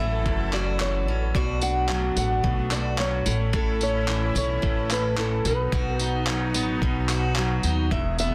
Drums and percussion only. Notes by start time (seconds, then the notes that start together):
0.26 kick
0.53 clap
0.80 clap
1.35 kick
1.61 tambourine
1.89 clap
2.17 tambourine
2.44 kick
2.71 clap, tambourine
2.98 clap
3.26 tambourine
3.54 kick
3.81 tambourine
4.08 clap
4.36 tambourine
4.63 kick
4.90 clap, tambourine
5.17 clap
5.45 tambourine
5.72 kick
5.99 tambourine
6.27 clap
6.54 tambourine
6.82 kick
7.09 clap, tambourine
7.36 clap
7.63 tambourine
7.91 kick
8.18 tambourine